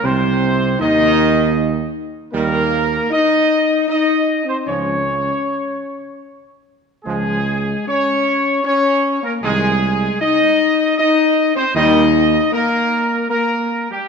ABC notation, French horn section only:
X:1
M:3/4
L:1/16
Q:1/4=78
K:Ebmix
V:1 name="French horn section"
C4 E6 z2 | B,4 E4 E3 C | D8- D2 z2 | A,4 D4 D3 B, |
A,4 E4 E3 C | E4 B,4 B,3 G, |]